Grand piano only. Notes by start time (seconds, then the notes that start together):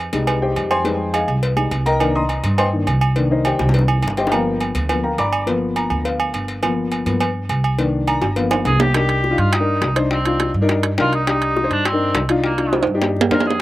0.13 G3 G#3 D#4
0.42 G4 C5 D#5 G5
0.71 C5 G5 G#5 C6
0.84 G3 G#3 D#4
1.14 G#4 D#5 F5 G#5
1.56 G3 G#3 D#4
1.86 A#4 D#5 G5 A#5
2.00 D#3 A#3 D4
2.15 D#5 A#5 C6 D#6
2.59 C5 D#5 G5 C6
2.73 D#3 A#3 D4
3.16 D#3 A#3 D4
3.31 D#4 A#4 C5 D#5
3.46 G4 C5 D#5 G5
4.18 G4 C5 D#5 G5
4.31 F3 A#3 B3 A#4 F5 G5 A#5
4.89 F3 A#3 B3
5.04 A#4 F5 G5 A#5
5.18 D5 A#5 B5 D6
5.46 F3 A#3 B3
5.77 A#5
6.05 F5
6.63 F3 A#3 B3
7.06 F3 A#3 B3
7.78 D#3 A#3 D4
8.07 A#5
8.36 F3 A#3 B3 F5
8.94 D4 D#4 A#4
9.30 D4 D#4 F4
9.60 D4 D#4 A#4
9.96 D4 D#4 C5
10.26 D4 D#4 F4
10.62 D4 D#4 A#4
10.98 D4 D#4 A#4
11.27 D4 D#4 G4
11.63 D4 D#4 C5
11.92 D4 D#4 A#4
12.29 D4 D#4 F4
12.58 D4 D#4 F4
12.94 D4 D#4 G4
13.31 D4 D#4 C5